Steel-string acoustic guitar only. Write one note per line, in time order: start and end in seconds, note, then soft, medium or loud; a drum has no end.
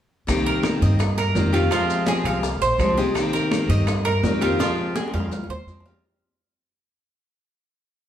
0.27 0.63 C3 medium
0.27 0.61 D#3 medium
0.27 0.62 A#3 medium
0.27 0.63 C4 medium
0.27 0.63 G4 medium
0.63 0.98 D#3 soft
0.63 0.99 A#3 soft
0.63 0.99 C4 soft
0.63 0.99 G4 soft
0.99 muted steel-string acoustic guitar stroke soft
1.36 1.53 D#3 soft
1.36 1.53 A#3 soft
1.36 1.52 C4 soft
1.36 1.51 G4 soft
1.53 1.71 D#3 soft
1.53 1.71 A#3 soft
1.53 1.71 C4 medium
1.53 1.70 G4 medium
1.71 2.06 C3 medium
1.71 2.04 F3 medium
1.71 2.05 G#3 medium
1.71 2.06 C4 medium
1.71 2.07 G4 medium
2.06 2.42 F3 soft
2.06 2.42 G#3 soft
2.06 2.42 C4 medium
2.06 2.43 G4 soft
2.43 muted steel-string acoustic guitar stroke medium
2.79 2.96 F3 soft
2.79 2.97 G#3 soft
2.79 2.97 C4 soft
2.79 2.96 G4 soft
2.97 3.15 F3 soft
2.97 3.15 G#3 medium
2.97 3.15 C4 medium
2.97 3.15 G4 medium
3.14 3.50 C3 medium
3.14 3.51 D#3 medium
3.14 3.51 A#3 medium
3.14 3.51 C4 medium
3.14 3.51 G4 medium
3.52 3.87 D#3 soft
3.52 3.87 A#3 soft
3.52 3.87 C4 soft
3.52 3.87 G4 medium
3.87 muted steel-string acoustic guitar stroke medium
4.24 4.41 D#3 soft
4.24 4.41 A#3 soft
4.24 4.40 C4 soft
4.24 4.40 G4 soft
4.41 4.59 D#3 soft
4.41 4.59 A#3 medium
4.41 4.59 C4 medium
4.41 4.59 G4 medium
4.59 4.95 C3 medium
4.59 4.95 F3 medium
4.59 4.95 G#3 medium
4.59 4.95 C4 medium
4.59 4.96 G4 medium
4.96 5.31 F3 soft
4.96 5.32 C4 medium
4.96 5.32 G4 medium
5.31 muted steel-string acoustic guitar stroke medium
5.68 5.85 F3 soft
5.68 5.86 G#3 soft
5.68 5.86 C4 soft
5.68 5.86 G4 soft
5.87 6.04 F3 soft
5.87 6.04 G#3 medium
5.87 6.04 C4 medium
5.87 6.03 G4 medium